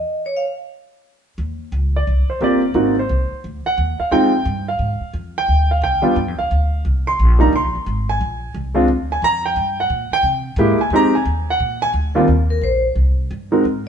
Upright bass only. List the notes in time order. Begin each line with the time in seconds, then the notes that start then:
1.38 D#2
1.72 C#2
2.07 C2
2.28 muted upright bass stroke
2.41 G1
2.74 G#1
3.09 C2
3.31 muted upright bass stroke
3.44 D2
3.65 muted upright bass stroke
3.78 D#2
3.99 muted upright bass stroke
4.11 F2
4.45 G2
4.79 G#2
5.00 muted upright bass stroke
5.13 F2
5.48 D2
5.82 C2
6.04 muted upright bass stroke
6.16 G2
6.28 F2
6.39 D2
6.51 D2
6.85 C2
7.19 A#1
7.53 C2
7.64 A#1
7.75 G1
7.86 G#1
8.21 A#1
8.54 C2
8.88 D2
9.22 F2
9.56 G2
9.90 A#2
10.11 muted upright bass stroke
10.23 C3
10.56 G#2
10.78 muted upright bass stroke
10.90 F2
11.25 D#2
11.60 A#2
11.93 D2
12.28 D#2
12.61 A#1
12.95 C2
13.31 G2
13.65 G#2